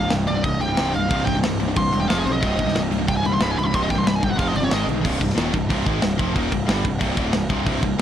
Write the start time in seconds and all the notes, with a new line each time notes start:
Already playing: C1 C2 G2 C3
0.03 C2 G2
0.10 C1 C2 G2, snare, crash
0.27 C1 C2 G2 D5, crash
0.37 C2 G2
0.44 C1 C2 G2 D#5, kick, crash
0.61 C1 C2 G2 G5, crash
0.70 C2 G2
0.77 C1 C2 G2 C3, snare, crash
0.94 C1 C2 G2 F5, crash
1.03 C2 G2
1.11 C1 C2 G2 C3, kick, crash
1.26 C1 C2 G2 G5, kick, crash
1.34 C2 G2
1.43 C1 C2 G2, snare, crash
1.60 C1 C2 G2, crash
1.67 C2 G2
1.76 C1 C2 G2 C6, kick, crash
1.93 E1 C2 G2, crash
2.00 C2 G2 G5
2.09 F1 F2 C3 F3 F5, snare, crash
2.18 G#4
2.25 B1 F2 C3 C5, crash
2.33 F2 C3 D#5
2.41 C1 C2 G2 C3, kick, crash
2.58 C1 C2 G2, kick, crash
2.66 C2 G2, snare
2.73 C1 C2 G2, snare, crash
2.91 C1 C2 G2, crash
2.99 C2 G2
3.07 C1 C2 G2 G5, kick, crash
3.17 G#5
3.23 C1 C2 G2 B5, crash
3.32 C2 G2 C6
3.40 C1 C2 G2 C3 B5, snare, crash
3.51 G#5
3.56 C1 C2 G2 B5, crash
3.63 C2 G2 B5 C6
3.73 C1 C2 G2 C3 C6, kick, crash
3.82 D#5
3.90 C1 C2 G2 G5, kick, crash
3.98 C2 G2 C6
4.05 C1 C2 G2 B5, snare, crash
4.15 G#5
4.21 G1 C2 G2 G5, kick, crash
4.29 C2 G2 F#5
4.37 F1 F2 C3 F3 F5, kick, crash
4.42 F3
4.48 D#5
4.53 G1 F2 C3 D5, crash
4.62 F2 C3 C#5
4.70 G#1 G#2 D#3 G#3 D#5, snare, crash
4.87 B1 G#2 D#3, crash
4.97 G#2 D#3
5.04 C1 C2 G2 C3, kick, crash
5.20 C1 C2 G2, kick, crash
5.30 snare
5.36 D#1 D#2 A#2 D#3, snare, crash
5.52 C1 C2 G2, kick, crash
5.69 C1 C2 G2 C3, kick, crash
5.85 G#1 G#2 D#3 G#3, kick, crash
6.02 C1 C2 G2, snare, crash
6.18 F1 F2 C3 F3, kick, crash
6.34 D#1 D#2 A#2 D#3, kick, crash
6.51 C1 C2 G2, kick, crash
6.67 G1 G2 D3 G3, snare, crash
6.85 C1 C2 G2, kick, crash
7.01 C1 C2 G2 C3, kick, crash
7.17 D1 D2 A2 D3, kick, crash
7.33 C1 C2 G2, snare, crash
7.50 C1 C2 G2 C3, kick, crash
7.66 C1 C2 G2 C3, kick, crash
7.82 C1 C2 G2, kick, crash
7.98 D#1 D#2